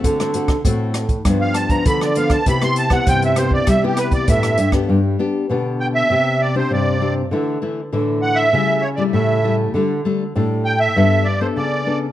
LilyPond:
<<
  \new Staff \with { instrumentName = "Accordion" } { \time 4/4 \key c \major \tempo 4 = 99 r2 r16 f''16 a''16 bes''16 b''16 d''16 f''16 a''16 | b''16 c'''16 a''16 fis''16 g''16 e''16 c''16 d''16 e''16 g'16 b'16 d''16 e''8. r16 | \key g \major r4. g''16 e''8. d''16 c''16 d''8. r16 | r4. fis''16 e''8. cis''16 d''16 e''8. r16 |
r4. g''16 e''8. d''16 c''16 d''8. r16 | }
  \new Staff \with { instrumentName = "Nylon-string guitar" } { \time 4/4 \key c \major << { <a c' fis'>16 <a c' fis'>16 <a c' fis'>16 r16 <a c' fis'>8. r16 <f b d'>8. <f b d'>8. <f b d'>16 r16 | <b e' g'>16 <b e' g'>8 <b e' g'>8. <b e' g'>8. <b e' g'>8. <b e' g'>8 r16 <b d' g'>16~ | \key g \major <b d' g'>16 r16 <b d' g'>8 <b d' g'>4 <c' d' g'>8 r16 <c' d' g'>8. <c' d' g'>16 r16 | <e a e'>8 <e a e'>16 r16 <e a e'>4 <g a e'>8 r16 <g a e'>8. <g a e'>8 |
<g a d'>16 r16 <g a d'>16 r16 <g a d'>8. r16 <b d' a'>8 r16 <b d' a'>8. <b d' a'>16 r16 | } \\ { d4 a,4 g,4 d4 | c4 g,4 c4 g,4 | g4 d4 c4 g,4 | d4 a,4 cis4 cis4 |
d4 a,4 g4 r4 | } >> }
  \new Staff \with { instrumentName = "Nylon-string guitar" } { \clef bass \time 4/4 \key c \major d4 a,4 g,4 d4 | c4 c4 g4 a,8 g,8 | \key g \major g,8 r8 b,4 c4 c4 | d8 r8 d4 cis4 a,4 |
d8 r8 a,4 g,4 cis4 | }
  \new DrumStaff \with { instrumentName = "Drums" } \drummode { \time 4/4 <hh bd>16 <hh ss>16 hh16 <bd ss>16 <hh bd>8 <hh ss>16 <hh bd>16 <hh bd ss>8 <hh ss>16 <hh bd>16 <hh bd>16 ss16 hh16 <hh bd ss>16 | <hh bd>16 ss16 hh16 <bd ss>16 <hh bd>16 hh16 <hh ss>16 bd16 <hh bd ss>8 <hh ss>16 <hh bd>16 <hh bd>16 <hh ss>16 hh16 <bd ss>16 | r4 r4 r4 r4 | r4 r4 r4 r4 |
r4 r4 r4 r4 | }
>>